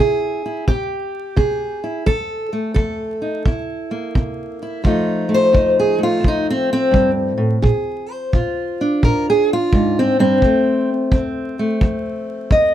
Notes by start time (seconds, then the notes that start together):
Already playing: C3 E4
0.00 G#4
0.46 E4
0.68 C3 G4, kick
1.36 C3 G#4, kick
1.84 E4
2.06 F2 A4, kick
2.53 A3
2.74 F2 A4, kick
3.22 D#4
3.46 C3 E4, kick
3.91 A#3
4.15 C3, kick
4.62 E4
4.84 F2 F3 A3 D#4 F4, kick
5.29 A3
5.34 C5
5.52 F2 D#4, kick
5.80 G#4
5.98 A3
6.03 F4
6.20 F2, kick
6.28 D#4
6.50 C4
6.73 C4
6.91 G2, kick
7.38 A2
7.62 A#2 G#4, kick
8.11 C5
8.33 A#2 F4, kick
8.81 D4
9.03 A#2 A#4, kick
9.30 G#4
9.53 F4
9.73 G#2, kick
9.99 C4
10.19 G2 C4
10.42 F2 A3, kick
11.11 F2 C4, kick
11.59 A3
11.81 F2, kick
12.50 F2 D#5, kick